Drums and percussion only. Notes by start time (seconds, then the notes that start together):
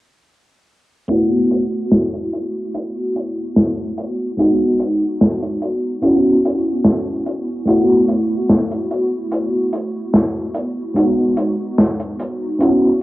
1.09 closed hi-hat
1.51 closed hi-hat
1.92 snare, closed hi-hat
2.14 closed hi-hat
2.33 closed hi-hat
2.74 closed hi-hat
3.16 closed hi-hat
3.56 snare, closed hi-hat
3.98 closed hi-hat
4.39 closed hi-hat
4.79 closed hi-hat
5.21 snare, closed hi-hat
5.42 closed hi-hat
5.62 closed hi-hat
6.02 closed hi-hat
6.45 closed hi-hat
6.84 snare, closed hi-hat
7.26 closed hi-hat
7.67 closed hi-hat
8.08 closed hi-hat
8.49 snare, closed hi-hat
8.71 closed hi-hat
8.91 closed hi-hat
9.32 closed hi-hat
9.73 closed hi-hat
10.14 snare, closed hi-hat
10.55 closed hi-hat
10.96 closed hi-hat
11.37 closed hi-hat
11.78 snare, closed hi-hat
12.00 closed hi-hat
12.20 closed hi-hat
12.60 closed hi-hat